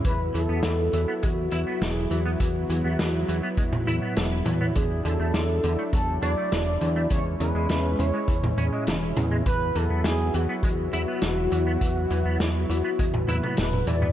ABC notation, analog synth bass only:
X:1
M:4/4
L:1/16
Q:1/4=102
K:E
V:1 name="Analog synth bass" clef=bass
E,,2 E,, E,, E,,2 E,, z E,,2 E,, z E,,,2 E,,2 | E,,2 E,, E,, E,,2 E,, z E,,2 E,, z E,,,2 E,,2 | E,,2 E,, E,, E,,2 E,, z E,,2 E,, z E,,,2 E,,2 | E,,2 E,, E,, E,,2 E,, z E,,2 E,, z E,,,2 E,,2 |
E,,2 E,, E,, E,,2 E,, z E,,2 E,, z E,,,2 E,,2 | E,,2 E,, E,, E,,2 E,, z E,,2 E,, z E,,,2 E,,2 |]